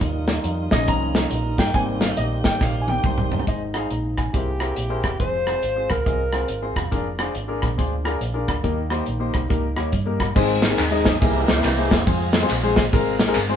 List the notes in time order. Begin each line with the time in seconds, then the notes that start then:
Already playing: D#3 D#4 F4
0.01 D#2 G3 A#3, kick, closed hi-hat
0.28 snare, closed hi-hat
0.44 F2, closed hi-hat
0.71 A#1 F3 G3 C#4 D#5, kick, snare, closed hi-hat
0.88 C2 A#5, kick, closed hi-hat
1.15 snare, closed hi-hat
1.31 A#1, closed hi-hat
1.58 G1 G5, kick, snare, closed hi-hat
1.74 G#1 G3 A#3 C4 G4 G#5, kick, closed hi-hat
2.01 F5, snare, closed hi-hat
2.17 A#1 D#5, closed hi-hat
2.44 G#1 G5, kick, snare, closed hi-hat
2.61 A#1 F5, kick, snare
2.81 G#5
2.88 G5, high tom
3.04 C2 C5, kick, mid tom
3.18 mid tom
3.31 G1, floor tom
3.39 floor tom
3.46 G#1 G#2 D#3 G#3 C4 D#4 G#4 C5 D#5, kick, closed hi-hat
3.74 D#4 G#4 C5 F5, cross-stick, closed hi-hat
3.90 A#1 A#5, closed hi-hat
4.18 G#5, kick, cross-stick, closed hi-hat
4.33 C2 C3 A#3 E4 G4 G#4 A#4 C5, kick, closed hi-hat
4.60 E4 G#4 A#4 C5, cross-stick, closed hi-hat
4.76 A#1, closed hi-hat
4.90 E4 G#4 A#4 C5
5.04 E1, kick, cross-stick, closed hi-hat
5.19 F1 F3 C4 F4 G#4 C5, kick, closed hi-hat
5.46 C4 F4 G#4 C5, cross-stick, closed hi-hat
5.63 G#1, closed hi-hat
5.76 C4 F4 G#4 C5
5.90 C#2 A#4, kick, cross-stick, closed hi-hat
6.06 C2 C4 F4 G#4 D#5, kick, closed hi-hat
6.32 C4 F4 G#4 C5, cross-stick, closed hi-hat
6.48 G#1, closed hi-hat
6.62 C4 F4 G#4 C5
6.76 E1, kick, cross-stick, closed hi-hat
6.91 F1 A#3 D4 F4 G#4 A#4, kick, closed hi-hat
7.19 D4 F4 G#4 C5, cross-stick, closed hi-hat
7.35 G#1, closed hi-hat
7.48 D4 F4 G#4 A#4
7.62 A#1, kick, cross-stick, closed hi-hat
7.78 D2 D4 F4 G#4 C5, kick, closed hi-hat
8.04 D4 F4 G#4 A#4, cross-stick, closed hi-hat
8.21 A#1, closed hi-hat
8.34 D4 F4 G#4 A#4
8.48 D2, kick, cross-stick, closed hi-hat
8.63 D#2 D#3 G3 A#3 D#4 G4 A#4, kick, closed hi-hat
8.90 A#3 D#4 G4 C5, cross-stick, closed hi-hat
9.06 A#1, closed hi-hat
9.19 A#3 D#4 G4 C5
9.34 C2, kick, cross-stick, closed hi-hat
9.49 C#2 A#3 D#4 G4 A#4, kick, closed hi-hat
9.76 D#2 A#3 D#4 G4 C#5, cross-stick, closed hi-hat
9.92 G2, kick, closed hi-hat
10.06 A#3 D#4 G4 A#4
10.20 G1, kick, cross-stick, closed hi-hat
10.35 G#1 G#2 D#3 G#3 C4 D#4 G#4 C5, kick, crash, tambourine
10.62 snare, clap, ride, tambourine
10.70 G#3 C4 D#4 G#4 A#4
10.78 D#2 C4 D#4 G#4, clap, ride, tambourine
10.91 G#3 C4 D#4 G#4 D#5
11.05 kick, snare, ride, tambourine
11.21 C2 C3 E3 G#3 A#3 C4 E4 G4 G#4 A#4, kick, ride, tambourine
11.48 C#2 E4 G4 C5, snare, ride, tambourine
11.56 A#3 C4 E4 G4 A#4
11.64 C2, clap, ride, tambourine
11.77 A#3 C4 E4 G4 G#4
11.91 E1 C4 F4 G#4, kick, snare, ride, tambourine
12.07 F2 F3 G#3 C4 F4 G#4 C5, kick, ride, tambourine
12.33 snare, clap, ride, tambourine
12.42 G#3 C4 F4 G#4 C5
12.49 A#1, clap, ride, tambourine
12.63 G#3 C4 F4 G#4 C5
12.76 F3 G#3 C4, kick, snare, ride, tambourine
12.93 G#1 G#3 C4 F4 G#4 A#4, kick, ride, tambourine
13.19 snare, ride, tambourine
13.27 G#3 C4 F4 G#4 A#4
13.35 G1, clap, ride, tambourine
13.49 G#3 C4 F4 G#4 C5